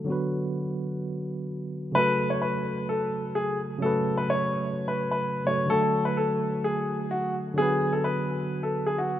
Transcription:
0.04 1.90 D3 medium
0.04 1.91 F#3 medium
0.04 1.92 B3 medium
0.10 1.93 F#4 medium
0.10 1.94 B4 medium
1.92 3.77 C#3 medium
1.92 3.78 F#3 medium
1.92 3.79 A3 medium
1.92 2.28 B4 loud
1.98 3.80 F#4 medium
1.98 3.81 A4 medium
2.30 2.41 C#5 medium
2.42 2.86 B4 medium
2.89 3.33 A4 medium
3.35 3.58 G#4 medium
3.78 5.41 C#3 medium
3.78 5.42 F#3 medium
3.78 5.43 A3 medium
3.82 5.44 F#4 medium
3.82 4.15 A4 medium
3.82 5.45 B4 medium
4.17 4.29 B4 medium
4.30 4.85 C#5 medium
4.88 5.10 B4 medium
5.11 5.44 B4 medium
5.44 5.69 C#3 soft
5.44 5.67 F#3 soft
5.44 5.69 A3 soft
5.44 5.70 F#4 medium
5.44 5.71 A4 medium
5.44 5.69 C#5 medium
5.66 7.52 D3 medium
5.66 7.53 F#3 medium
5.66 7.54 A3 medium
5.66 6.03 A4 loud
5.72 7.55 F#4 medium
6.05 6.16 B4 medium
6.17 6.61 A4 medium
6.64 7.08 G#4 medium
7.11 7.33 F#4 medium
7.54 9.20 D3 medium
7.54 9.20 F#3 medium
7.54 9.20 B3 medium
7.54 7.91 G#4 loud
7.60 9.20 F#4 medium
7.60 9.20 B4 medium
7.93 8.04 A4 medium
8.04 8.59 B4 medium
8.63 8.85 A4 medium
8.87 8.98 G#4 medium
8.98 9.20 F#4 medium

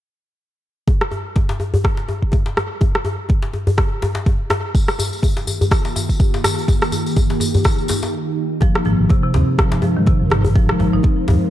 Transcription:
0.88 kick loud
0.88 djembe tone medium
1.01 cross-stick medium
1.11 djembe tone medium
1.36 kick loud
1.36 djembe tone medium
1.49 djembe slap medium
1.60 djembe tone medium
1.74 djembe bass loud
1.84 kick loud
1.84 cross-stick medium
1.84 djembe tone medium
1.97 djembe slap medium
2.08 djembe tone medium
2.22 kick medium
2.32 kick loud
2.32 djembe tone medium
2.46 djembe slap medium
2.57 cross-stick medium
2.57 djembe tone medium
2.81 kick loud
2.81 djembe tone medium
2.95 cross-stick medium
3.05 djembe tone medium
3.29 kick loud
3.29 djembe tone medium
3.43 djembe slap medium
3.53 djembe tone medium
3.67 djembe bass loud
3.78 kick loud
3.78 cross-stick medium
3.78 djembe tone medium
4.02 djembe slap medium
4.02 djembe tone medium
4.02 djembe bass medium
4.15 djembe slap medium
4.26 kick loud
4.26 djembe tone loud
4.50 cross-stick medium
4.50 djembe slap medium
4.50 djembe tone loud
4.75 8.58 D#3 medium
4.75 8.58 A#3 medium
4.75 6.67 F4 medium
4.75 8.58 G4 medium
4.75 kick loud
4.75 tambourine soft
4.75 djembe tone medium
4.88 cross-stick medium
4.88 tambourine soft
4.99 tambourine loud
4.99 djembe tone medium
5.13 tambourine soft
5.23 kick loud
5.23 tambourine medium
5.23 djembe tone medium
5.37 tambourine soft
5.37 djembe slap medium
5.47 tambourine medium
5.47 djembe tone medium
5.61 tambourine soft
5.61 djembe bass medium
5.71 kick loud
5.71 cross-stick medium
5.71 tambourine medium
5.71 djembe tone medium
5.85 tambourine soft
5.85 djembe slap medium
5.96 tambourine medium
5.96 djembe tone medium
6.09 kick medium
6.09 tambourine soft
6.19 kick loud
6.19 tambourine soft
6.19 djembe tone medium
6.34 tambourine soft
6.34 djembe slap medium
6.44 cross-stick loud
6.44 tambourine loud
6.44 djembe tone medium
6.59 tambourine soft
6.68 8.60 D#4 medium
6.68 kick loud
6.68 tambourine medium
6.68 djembe tone medium
6.81 cross-stick medium
6.81 tambourine soft
6.92 tambourine medium
6.92 djembe tone medium
7.06 tambourine soft
7.16 kick loud
7.16 tambourine medium
7.16 djembe tone medium
7.30 tambourine soft
7.30 djembe slap medium
7.40 tambourine loud
7.40 djembe tone medium
7.54 tambourine soft
7.54 djembe bass medium
7.64 kick loud
7.64 cross-stick medium
7.64 tambourine medium
7.64 djembe tone medium
7.78 tambourine soft
7.88 tambourine medium
7.88 djembe slap medium
7.88 djembe tone loud
7.88 djembe bass medium
8.02 tambourine soft
8.02 djembe slap medium
8.61 8.75 F3 medium
8.61 11.50 G#3 medium
8.61 11.50 D#4 medium
8.61 11.50 A#4 medium
8.61 11.50 C5 medium
8.61 kick loud
8.61 djembe tone medium
8.75 cross-stick medium
8.85 8.95 G#1 loud
8.85 8.93 F3 medium
8.85 djembe tone medium
9.00 9.06 G#1 medium
9.09 9.18 C3 medium
9.09 kick loud
9.09 djembe tone medium
9.24 9.34 C3 loud
9.34 9.43 D#2 medium
9.34 9.47 C4 medium
9.34 djembe slap medium
9.34 djembe tone medium
9.58 9.72 F3 medium
9.58 kick loud
9.58 cross-stick medium
9.58 djembe tone medium
9.72 djembe slap loud
9.82 9.90 F3 medium
9.82 djembe tone medium
9.97 10.10 G#2 medium
9.97 10.07 D#3 medium
10.06 10.14 C3 medium
10.06 kick loud
10.06 djembe tone medium
10.21 10.28 D#1 medium
10.30 10.73 G#1 medium
10.30 cross-stick medium
10.30 djembe tone medium
10.45 djembe bass loud
10.55 10.68 F3 medium
10.55 kick loud
10.55 djembe tone medium
10.69 10.78 F3 medium
10.69 cross-stick medium
10.79 10.88 G#1 loud
10.79 10.87 F3 medium
10.79 djembe tone medium
10.93 11.00 G#1 medium
10.93 10.99 D#4 loud
11.03 11.17 C4 medium
11.03 kick loud
11.03 djembe tone medium
11.28 11.37 D#2 medium
11.28 11.40 F3 medium
11.28 djembe slap medium
11.28 djembe tone medium
11.28 djembe bass medium

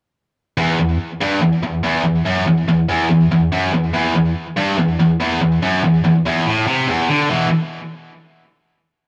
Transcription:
0.58 0.78 E2 loud
0.79 0.96 E2 medium
1.21 1.41 G2 loud
1.42 1.59 E2 medium
1.63 1.80 E2 medium
1.84 2.04 E2 medium
2.05 2.22 E2 medium
2.26 2.46 F#2 loud
2.47 2.64 E2 medium
2.68 2.85 E2 medium
2.89 3.09 E2 loud
3.10 3.27 E2 medium
3.31 3.48 E2 medium
3.52 3.73 F#2 loud
3.74 3.90 E2 medium
3.94 4.14 E2 loud
4.16 4.32 E2 medium
4.57 4.77 G2 loud
4.78 4.95 E2 medium
5.00 5.16 E2 medium
5.20 5.40 E2 loud
5.41 5.58 E2 medium
5.62 5.82 F#2 loud
5.84 6.00 E2 medium
6.04 6.21 E2 medium
6.26 6.46 E2 loud
6.46 6.66 A2 loud
6.67 6.87 C3 loud
6.88 7.08 E2 medium
7.09 7.29 D3 loud
7.30 7.47 E2 loud
7.30 7.47 B2 loud
7.30 7.47 E3 loud

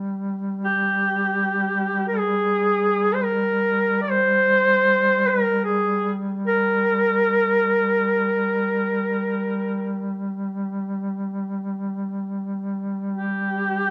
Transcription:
0.00 13.90 G3 soft
0.64 2.04 G4 medium
2.08 2.20 A#4 medium
2.18 3.16 G#4 medium
3.14 3.25 C5 medium
3.23 4.01 A#4 medium
4.02 4.12 D5 medium
4.11 5.30 C5 medium
5.29 5.63 A#4 medium
5.64 6.11 G#4 medium
6.47 10.25 A#4 medium
13.13 13.90 G4 medium

